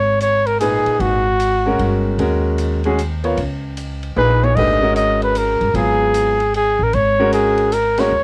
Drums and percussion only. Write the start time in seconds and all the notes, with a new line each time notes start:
0.20 hi-hat pedal, ride
0.47 ride
0.60 hi-hat pedal, ride
0.86 ride
1.00 ride
1.40 hi-hat pedal, ride
1.79 ride
2.19 ride
2.58 hi-hat pedal, ride
2.84 ride
2.98 hi-hat pedal, ride
3.24 ride
3.37 ride
3.77 hi-hat pedal, ride
4.03 ride
4.17 high tom
4.30 high tom
4.44 high tom
4.57 kick, crash
4.96 hi-hat pedal, ride
5.22 ride
5.35 hi-hat pedal, ride
5.61 ride
5.75 ride
6.14 hi-hat pedal, ride
6.40 ride
6.54 ride
6.93 ride
7.32 hi-hat pedal, ride
7.58 ride
7.72 hi-hat pedal, ride
7.98 snare, ride